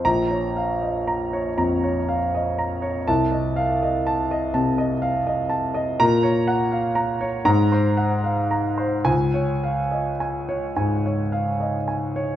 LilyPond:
<<
  \new Staff \with { instrumentName = "Grand piano" } { \time 4/4 \key f \phrygian \tempo 4 = 79 << { bes''8 r2. r8 | a''8 r2. r8 | \key des \major bes''8 r4. bes''8 r4. | aes''8 r2. r8 | } \\ { \tuplet 3/2 { r8 des''8 f''8 ees''8 bes''8 des''8 bes''8 des''8 f''8 ees''8 bes''8 des''8 } | \tuplet 3/2 { r8 ees''8 f''8 ees''8 a''8 ees''8 a''8 ees''8 f''8 ees''8 a''8 ees''8 } | \tuplet 3/2 { r8 des''8 ges''8 f''8 bes''8 des''8 r8 c''8 ges''8 f''8 bes''8 c''8 } | \tuplet 3/2 { r8 des''8 f''8 ees''8 aes''8 des''8 aes''8 des''8 f''8 ees''8 aes''8 des''8 } | } >> }
  \new Staff \with { instrumentName = "Grand piano" } { \clef bass \time 4/4 \key f \phrygian bes,,2 f,4 r4 | c,2 c4 r4 | \key des \major bes,2 aes,2 | des,2 aes,4 r4 | }
>>